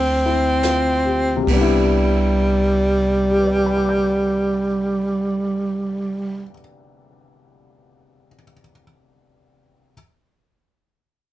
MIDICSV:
0, 0, Header, 1, 5, 480
1, 0, Start_track
1, 0, Key_signature, 0, "major"
1, 0, Tempo, 1190476
1, 253, Tempo, 1295896
1, 733, Tempo, 1372998
1, 734, Time_signature, 4, 2, 24, 8
1, 4019, End_track
2, 0, Start_track
2, 0, Title_t, "Grand piano"
2, 0, Program_c, 0, 0
2, 0, Control_c, 0, 64, 127
2, 0, Note_on_c, 0, 53, 35
2, 0, Note_on_c, 0, 57, 36
2, 0, Note_on_c, 0, 60, 41
2, 0, Note_on_c, 0, 62, 37
2, 0, Note_on_c, 0, 64, 39
2, 98, Note_off_c, 0, 64, 0
2, 104, Note_on_c, 0, 64, 42
2, 261, Note_on_c, 0, 65, 42
2, 346, Note_off_c, 0, 64, 0
2, 411, Note_on_c, 0, 67, 37
2, 527, Note_on_c, 0, 48, 58
2, 551, Note_on_c, 0, 55, 50
2, 555, Note_off_c, 0, 65, 0
2, 557, Note_off_c, 0, 67, 0
2, 564, Note_off_c, 0, 53, 0
2, 568, Note_off_c, 0, 57, 0
2, 568, Note_off_c, 0, 60, 0
2, 570, Control_c, 0, 64, 0
2, 572, Note_off_c, 0, 62, 0
2, 576, Note_on_c, 0, 59, 52
2, 596, Note_on_c, 0, 62, 50
2, 618, Note_on_c, 0, 64, 62
2, 624, Control_c, 0, 64, 127
2, 738, Control_c, 0, 64, 0
2, 807, Control_c, 0, 64, 127
2, 1219, Note_on_c, 0, 67, 35
2, 1246, Note_on_c, 0, 71, 37
2, 1274, Note_on_c, 0, 74, 32
2, 1306, Note_on_c, 0, 79, 30
2, 1341, Note_on_c, 0, 83, 29
2, 1379, Note_on_c, 0, 86, 26
2, 1420, Note_on_c, 0, 91, 29
2, 2281, Note_off_c, 0, 48, 0
2, 2304, Note_off_c, 0, 55, 0
2, 2328, Note_off_c, 0, 59, 0
2, 2347, Note_off_c, 0, 62, 0
2, 2368, Note_off_c, 0, 64, 0
2, 2948, Note_off_c, 0, 67, 0
2, 2975, Note_off_c, 0, 71, 0
2, 3003, Note_off_c, 0, 74, 0
2, 3035, Note_off_c, 0, 79, 0
2, 3070, Note_off_c, 0, 83, 0
2, 3108, Note_off_c, 0, 86, 0
2, 3149, Note_off_c, 0, 91, 0
2, 3535, Control_c, 0, 64, 0
2, 4019, End_track
3, 0, Start_track
3, 0, Title_t, "Tenor saxophone"
3, 0, Program_c, 1, 66
3, 0, Note_on_c, 1, 60, 77
3, 560, Note_off_c, 1, 60, 0
3, 583, Note_on_c, 1, 55, 80
3, 2320, Note_off_c, 1, 55, 0
3, 4019, End_track
4, 0, Start_track
4, 0, Title_t, "Upright bass"
4, 0, Program_c, 2, 32
4, 0, Note_on_c, 2, 38, 69
4, 551, Note_off_c, 2, 38, 0
4, 566, Note_on_c, 2, 36, 59
4, 2304, Note_off_c, 2, 36, 0
4, 4019, End_track
5, 0, Start_track
5, 0, Title_t, "Drums"
5, 254, Note_on_c, 9, 38, 38
5, 254, Note_on_c, 9, 44, 52
5, 291, Note_off_c, 9, 38, 0
5, 291, Note_off_c, 9, 44, 0
5, 566, Note_on_c, 9, 36, 48
5, 569, Note_on_c, 9, 51, 60
5, 603, Note_off_c, 9, 36, 0
5, 606, Note_off_c, 9, 51, 0
5, 4019, End_track
0, 0, End_of_file